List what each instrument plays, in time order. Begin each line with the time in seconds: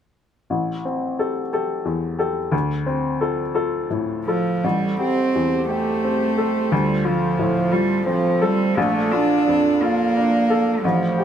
0.50 upright piano A1
0.85 upright piano C4
1.19 upright piano G4 A4
1.53 upright piano G4 A4
1.85 upright piano E2
2.19 upright piano G4 A4
2.52 upright piano D2
2.86 upright piano C4
3.21 upright piano F4 A4
3.55 upright piano F4 A4
3.90 upright piano A2
4.25 cello F3, upright piano F4 A4
4.63 upright piano A1, cello G3, analog synth pad G4 A4 C5
4.99 cello C4, upright piano G4
5.35 upright piano E2
5.69 cello A3, upright piano G4
6.04 upright piano C4
6.38 upright piano A4
6.71 upright piano D2, cello G3, analog synth pad F4
7.05 cello F3, upright piano F4
7.39 upright piano A2
7.71 cello G3, upright piano F4
8.06 cello F3, upright piano C4
8.41 cello G3, upright piano A4
8.76 upright piano A#1, cello A3, analog synth pad D5
9.11 cello D4, upright piano F4
9.48 upright piano F2
9.81 cello A#3, upright piano F4
10.17 upright piano D4
10.50 upright piano A4
10.83 upright piano A1, cello F3, analog synth pad A3 G4 C5
11.18 upright piano G4